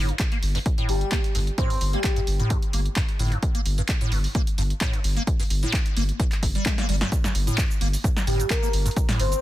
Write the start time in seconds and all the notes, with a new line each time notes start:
Already playing: G1 A2
0.09 G2, closed hi-hat
0.19 kick, clap, closed hi-hat
0.32 A#3, closed hi-hat
0.43 G1, open hi-hat
0.55 G2, open hi-hat
0.66 kick, closed hi-hat
0.78 A2, closed hi-hat
0.89 G1 G2 G4, open hi-hat
1.01 closed hi-hat
1.12 A#3, kick, clap, closed hi-hat
1.24 closed hi-hat
1.35 G1 G2, open hi-hat
1.47 closed hi-hat
1.58 A2 C5, kick, closed hi-hat
1.70 G2, open hi-hat
1.81 G1, open hi-hat
1.93 A#3 G4, closed hi-hat
2.04 G4, kick, clap, closed hi-hat
2.16 G2, closed hi-hat
2.27 G1, open hi-hat
2.40 A2, closed hi-hat
2.50 G2, kick, closed hi-hat
2.62 closed hi-hat
2.73 G1 A#3, open hi-hat
2.86 closed hi-hat
2.96 G2, kick, clap, closed hi-hat
3.09 closed hi-hat
3.19 G1 A2, open hi-hat
3.32 G2, closed hi-hat
3.43 kick, closed hi-hat
3.55 A#3, closed hi-hat
3.66 G1, open hi-hat
3.78 G2, closed hi-hat
3.89 kick, clap, closed hi-hat
4.01 A2, closed hi-hat
4.12 G1 G2, open hi-hat
4.24 open hi-hat
4.35 A#3, kick, closed hi-hat
4.47 closed hi-hat
4.58 G1 G2, open hi-hat
4.70 closed hi-hat
4.81 A2, kick, clap, closed hi-hat
4.93 G2, closed hi-hat
5.04 G1, open hi-hat
5.17 A#3, closed hi-hat
5.27 kick, closed hi-hat
5.40 G2, open hi-hat
5.50 G1, open hi-hat
5.63 A2, closed hi-hat
5.73 G2, kick, clap, closed hi-hat
5.86 closed hi-hat
5.97 G1 A#3, open hi-hat
6.09 closed hi-hat
6.20 G2, kick, closed hi-hat
6.32 clap, closed hi-hat
6.43 G1 F2, kick, open hi-hat
6.55 G3, closed hi-hat
6.66 kick, clap, closed hi-hat, high tom
6.78 A#3, snare, closed hi-hat
6.89 G1 G3, open hi-hat
7.01 G2, snare, closed hi-hat
7.12 kick, closed hi-hat, shaker
7.24 G2, snare, shaker
7.35 G1, open hi-hat
7.47 A2, closed hi-hat, shaker
7.58 G2, kick, clap, closed hi-hat, shaker
7.71 shaker
7.81 G1 A#3, open hi-hat
7.93 open hi-hat, shaker
8.04 G2, kick, closed hi-hat, shaker
8.17 snare, shaker
8.27 G1 A2 G4, open hi-hat
8.39 G2, closed hi-hat, shaker
8.50 A#4, kick, clap, closed hi-hat, shaker
8.62 A#3 A#4, shaker
8.73 G1, open hi-hat
8.85 G2, closed hi-hat, shaker
8.91 closed hi-hat
8.96 kick, closed hi-hat, shaker
9.09 A2, snare, open hi-hat, shaker
9.19 G1 G2 C5, open hi-hat
9.32 closed hi-hat, shaker